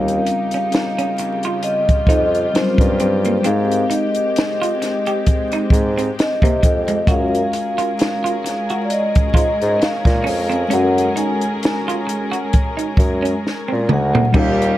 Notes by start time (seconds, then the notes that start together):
Already playing: D#2 C#3 G3 C4 C#4 D#4 F4 G4 A#4 F5
0.08 closed hi-hat
0.26 muted clean electric guitar stroke, closed hi-hat
0.51 C#4, closed hi-hat
0.72 snare, closed hi-hat
0.98 C#4, closed hi-hat
1.18 muted clean electric guitar stroke, closed hi-hat
1.43 F4, closed hi-hat
1.63 F4 D#5, closed hi-hat
1.89 kick, closed hi-hat
2.07 F2 D#4 D#5, kick, closed hi-hat
2.35 closed hi-hat
2.53 F#3 C4 C#4 F4 A#4 C5, muted clean electric guitar stroke, snare, closed hi-hat
2.60 G3
2.78 G2, kick, closed hi-hat
3.00 G2 C4, closed hi-hat
3.25 A#3, closed hi-hat
3.42 G#2 G#3 C4 D#4 F5, closed hi-hat
3.48 G4 A#4
3.72 closed hi-hat
3.90 D#4 D#5, closed hi-hat
4.15 closed hi-hat
4.36 snare, closed hi-hat
4.62 F4, closed hi-hat
4.82 muted clean electric guitar stroke, snare, closed hi-hat
5.06 G4, closed hi-hat
5.27 kick, closed hi-hat
5.52 D#4, closed hi-hat
5.70 G#2, muted clean electric guitar stroke, kick, closed hi-hat
5.97 C4, closed hi-hat
6.19 D#5, snare, closed hi-hat
6.42 C3 A#3, kick, closed hi-hat
6.63 F2, muted clean electric guitar stroke, kick, closed hi-hat
6.88 G#3, closed hi-hat
7.06 F#2 G#3 C#4 F4 F#4 G#4 A#4, kick, closed hi-hat
7.11 F#4 G#4 F5
7.20 A#4
7.35 closed hi-hat
7.53 muted clean electric guitar stroke, closed hi-hat
7.78 F4, closed hi-hat
7.99 snare, closed hi-hat
8.24 F4, closed hi-hat
8.44 muted clean electric guitar stroke, snare, closed hi-hat
8.70 F#4, closed hi-hat
8.84 D5
8.90 D#5, closed hi-hat
9.15 kick, closed hi-hat
9.34 G#2 F4 D#5, kick, closed hi-hat
9.62 G#2, closed hi-hat
9.80 F5, muted clean electric guitar stroke, snare, closed hi-hat
10.05 A#2, kick, snare, closed hi-hat
10.24 F2 C#4, open hi-hat
10.50 C4, closed hi-hat
10.68 G#3 C#4, closed hi-hat
10.72 F#2 F#4 G#4 A4 F#5
10.82 A#4
10.98 closed hi-hat
11.16 D#4 G#5, closed hi-hat
11.41 closed hi-hat
11.63 snare, closed hi-hat
11.88 F4, closed hi-hat
12.07 muted clean electric guitar stroke, closed hi-hat
12.32 F#4, closed hi-hat
12.53 kick, closed hi-hat
12.77 D#4, closed hi-hat
12.97 F#2, muted clean electric guitar stroke, kick, closed hi-hat
13.22 C#4, closed hi-hat
13.47 snare
13.68 C4
13.72 A#2
13.89 D2, muted clean electric guitar stroke, mid tom
13.94 F#5
14.15 A#3, floor tom
14.32 D#2 D#3 G3 C#4 D#4 F4 G4, kick, crash
14.38 F4 A#4 F5
14.62 closed hi-hat